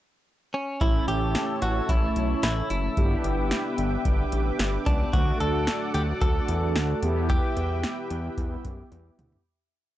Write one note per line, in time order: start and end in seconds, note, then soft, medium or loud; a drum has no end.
0.54 0.82 C#4 medium
0.81 1.00 A1 loud
0.81 2.93 A3 medium
0.81 2.93 C#4 medium
0.81 2.93 E4 medium
0.81 1.08 E4 loud
0.81 2.95 C#5 medium
0.81 5.09 E5 medium
0.81 2.95 A5 medium
0.81 2.95 E6 medium
0.81 kick loud
0.81 closed hi-hat medium
1.08 1.36 A1 medium
1.08 1.62 G4 loud
1.08 closed hi-hat medium
1.35 snare loud
1.35 closed hi-hat medium
1.62 1.81 A1 loud
1.62 1.90 F#4 medium
1.62 closed hi-hat medium
1.89 2.08 A1 loud
1.89 2.42 E4 medium
1.89 kick loud
1.89 closed hi-hat medium
2.16 2.35 B1 loud
2.16 closed hi-hat medium
2.43 2.62 A1 loud
2.43 2.68 E4 medium
2.43 snare loud
2.43 closed hi-hat medium
2.70 2.89 F#1 medium
2.70 3.74 E4 medium
2.70 closed hi-hat medium
2.97 3.16 G1 loud
2.97 5.09 B3 medium
2.97 5.09 D4 medium
2.97 5.09 G4 medium
2.97 5.11 B4 medium
2.97 5.11 G5 medium
2.97 9.42 D6 medium
2.97 kick loud
2.97 closed hi-hat medium
3.24 3.53 G1 loud
3.24 closed hi-hat medium
3.51 snare loud
3.51 closed hi-hat medium
3.78 3.97 G1 loud
3.78 closed hi-hat medium
4.05 4.24 G1 loud
4.05 kick loud
4.05 closed hi-hat medium
4.32 4.51 A1 medium
4.32 closed hi-hat medium
4.59 4.78 G1 loud
4.59 snare loud
4.59 closed hi-hat medium
4.86 5.05 C#2 medium
4.86 5.14 D4 medium
4.86 kick medium
4.86 closed hi-hat medium
5.13 5.32 D2 loud
5.13 6.99 A3 medium
5.13 6.99 D4 medium
5.13 5.40 F#4 loud
5.13 6.99 F#4 medium
5.13 7.01 A4 medium
5.13 7.01 D5 medium
5.13 7.01 F#5 medium
5.13 kick loud
5.13 closed hi-hat medium
5.40 5.69 D2 medium
5.40 5.94 A4 loud
5.40 closed hi-hat medium
5.67 snare loud
5.67 closed hi-hat medium
5.94 6.13 D2 loud
5.94 6.02 G4 loud
5.94 closed hi-hat medium
6.21 6.40 D2 loud
6.21 7.29 A4 loud
6.21 kick loud
6.21 closed hi-hat medium
6.48 6.77 E2 medium
6.48 closed hi-hat medium
6.76 6.94 D2 loud
6.76 snare loud
6.76 closed hi-hat medium
7.02 7.40 E2 medium
7.02 9.42 B3 medium
7.02 9.42 E4 medium
7.02 9.42 G4 medium
7.02 9.43 B4 medium
7.02 9.43 E5 medium
7.02 9.43 G5 medium
7.02 closed hi-hat medium
7.30 9.15 G4 medium
7.30 kick loud
7.30 closed hi-hat medium
7.57 7.85 E2 medium
7.57 closed hi-hat medium
7.83 snare loud
7.83 closed hi-hat medium
8.10 8.30 E2 loud
8.10 closed hi-hat medium
8.38 8.57 E2 loud
8.38 kick medium
8.38 closed hi-hat medium
8.65 8.84 F#2 loud
8.65 kick medium
8.65 closed hi-hat medium
8.92 9.11 E2 loud
8.92 closed hi-hat medium
8.92 high tom soft
9.19 9.38 D2 medium
9.19 closed hi-hat medium
9.19 mid tom medium
9.32 floor tom medium